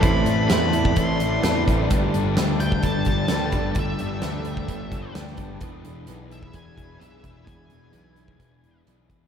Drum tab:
HH |x-x-x-x-x-x-x-x-|x-x-x-x-x-x-x-x-|x-x-x-x-x-x-x-x-|x-x-x-x-x-x-x-x-|
SD |----o-------o---|----o-------o---|----o-------oo--|----------------|
BD |o------oo-----o-|o------oo-o---o-|o------oo-o---o-|o------oo-o---o-|

HH |x-x-x-x-x-x-x-x-|
SD |----------------|
BD |o------oo-----o-|